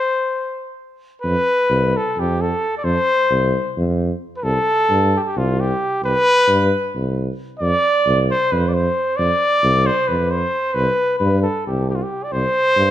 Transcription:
Already playing: trumpet C5
1.22 tuba F2, trumpet B4
1.70 tuba C2
1.97 trumpet A4
2.17 tuba F2, trumpet G4
2.41 trumpet A4
2.78 trumpet D5
2.84 tuba F2, trumpet C5
3.31 tuba C2
3.77 tuba F2
4.37 trumpet B4
4.43 tuba C2, trumpet A4
4.90 tuba G2
5.16 trumpet G4 A4
5.27 trumpet G4
5.36 tuba C2, trumpet F4
5.60 trumpet G4
6.02 tuba C2, trumpet B4
6.48 tuba G2
6.95 tuba C2
7.59 tuba F2, trumpet D5
8.06 tuba C2
8.31 trumpet C5
8.52 tuba F2, trumpet B4
8.69 trumpet D5
8.74 trumpet C5
9.17 tuba F2, trumpet D5
9.64 tuba C2
9.86 trumpet C5
10.08 tuba F2, trumpet B4
10.31 trumpet C5
10.74 tuba C2, trumpet B4
11.19 tuba G2, trumpet B4
11.43 trumpet A4
11.67 tuba C2, trumpet G4
11.90 trumpet G4
11.95 trumpet F4
12.03 trumpet G4
12.24 trumpet D5
12.32 tuba C2, trumpet C5
12.77 tuba G2

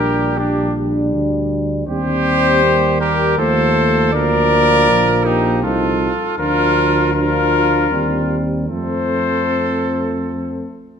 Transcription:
Already playing: bass trombone A#1, euphonium G3, french horn D4, trumpet G4, cornet A#4
0.37 euphonium G3, french horn D4, trumpet D4, cornet G4
1.13 bass trombone D2
1.88 bass trombone D#2, euphonium G3, french horn C4, trumpet G4, cornet C5
2.63 french horn A#3
3.00 trumpet G4, cornet A#4
3.37 bass trombone D#2, euphonium F3, french horn A3, trumpet A4, cornet C5
4.13 bass trombone D2, euphonium F3, french horn A#3, trumpet A#4, cornet D5
4.89 bass trombone A#1
5.25 trumpet D#4, cornet G4
5.62 bass trombone C2, euphonium F3, french horn D#4, trumpet F4, cornet A4
6.39 bass trombone D2, euphonium F3, french horn D4, trumpet F4, cornet A#4
7.14 euphonium F3, french horn D4, trumpet F4, cornet A#4
7.90 bass trombone D#2, euphonium G3, french horn C4
8.68 bass trombone F2, euphonium A3, french horn C4, trumpet A4, cornet C5

